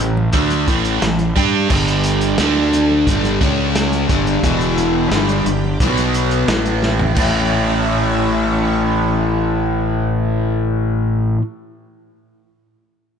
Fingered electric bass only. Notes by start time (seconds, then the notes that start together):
0.00 A1
0.33 D2
0.68 A1
1.02 A1
1.36 G2
1.70 G1
2.39 D2
3.06 G1
3.41 C#2
4.09 G1
4.43 E1
5.11 G1
5.45 G1
5.80 B1
6.48 A1
7.16 A1